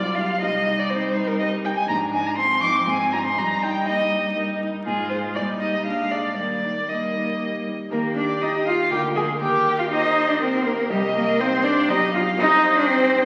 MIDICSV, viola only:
0, 0, Header, 1, 2, 480
1, 0, Start_track
1, 0, Key_signature, -3, "major"
1, 0, Tempo, 494234
1, 397, Time_signature, 3, 2, 24, 8
1, 5197, Tempo, 512383
1, 7597, Tempo, 496689
1, 12755, End_track
2, 0, Start_track
2, 0, Title_t, "Viola"
2, 0, Program_c, 0, 41
2, 0, Note_on_c, 0, 65, 45
2, 401, Note_on_c, 0, 63, 51
2, 415, Note_off_c, 0, 65, 0
2, 1822, Note_off_c, 0, 63, 0
2, 1827, Note_on_c, 0, 62, 46
2, 2303, Note_on_c, 0, 60, 54
2, 2318, Note_off_c, 0, 62, 0
2, 3260, Note_off_c, 0, 60, 0
2, 3266, Note_on_c, 0, 63, 50
2, 4211, Note_off_c, 0, 63, 0
2, 4237, Note_on_c, 0, 63, 46
2, 4706, Note_off_c, 0, 63, 0
2, 4726, Note_on_c, 0, 65, 45
2, 5200, Note_on_c, 0, 63, 45
2, 5214, Note_off_c, 0, 65, 0
2, 5673, Note_on_c, 0, 62, 37
2, 5687, Note_off_c, 0, 63, 0
2, 6145, Note_off_c, 0, 62, 0
2, 6150, Note_on_c, 0, 58, 36
2, 6626, Note_off_c, 0, 58, 0
2, 6637, Note_on_c, 0, 58, 39
2, 7393, Note_off_c, 0, 58, 0
2, 7597, Note_on_c, 0, 67, 56
2, 8525, Note_off_c, 0, 67, 0
2, 8563, Note_on_c, 0, 70, 52
2, 9034, Note_off_c, 0, 70, 0
2, 9040, Note_on_c, 0, 70, 60
2, 9516, Note_off_c, 0, 70, 0
2, 9531, Note_on_c, 0, 72, 68
2, 10002, Note_off_c, 0, 72, 0
2, 10009, Note_on_c, 0, 70, 58
2, 10489, Note_on_c, 0, 75, 75
2, 10503, Note_off_c, 0, 70, 0
2, 10967, Note_on_c, 0, 72, 83
2, 10982, Note_off_c, 0, 75, 0
2, 11447, Note_on_c, 0, 67, 69
2, 11461, Note_off_c, 0, 72, 0
2, 11923, Note_off_c, 0, 67, 0
2, 11928, Note_on_c, 0, 72, 82
2, 12755, Note_off_c, 0, 72, 0
2, 12755, End_track
0, 0, End_of_file